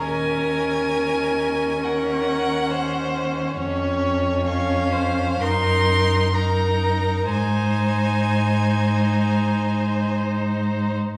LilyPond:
<<
  \new Staff \with { instrumentName = "Violin" } { \time 4/4 \key ees \dorian \tempo 4 = 64 aes''2 ges''2 | r4 f''4 c'''4 bes''4 | aes''2. r4 | }
  \new Staff \with { instrumentName = "Violin" } { \time 4/4 \key ees \dorian bes'2 bes'4 c''4 | des''4 des''8 c''8 bes'4 bes'4 | c''1 | }
  \new Staff \with { instrumentName = "Viola" } { \time 4/4 \key ees \dorian des'2 des'2 | des'4 des'4 ees'4 ees'4 | ees'1 | }
  \new Staff \with { instrumentName = "Cello" } { \clef bass \time 4/4 \key ees \dorian ees,1 | f,2 ges,2 | aes,1 | }
>>